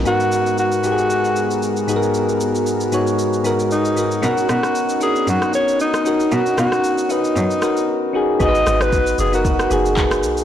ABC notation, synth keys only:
X:1
M:4/4
L:1/16
Q:"Swing 16ths" 1/4=115
K:G#m
V:1 name="Synth keys"
[G,,B,DFA]4- [G,,B,DFA] z [G,,B,DF=G^G]6 z2 [G,,B,DFGA]2- | [G,,B,DFGA]4 z2 [G,,B,DFc]3 z [G,,B,DFA]3 z [G,,B,DFA]2 | [CDFA]4- [CDFA] z [C=D^DFA]6 z2 [CDFA]2- | [CDFA]4 z2 [CDFB]3 z [CDFA]3 z [CDFG]2 |
[B,DFGB]6 z [B,DFA]2 z [B,DFG]4- [B,DFG] z |]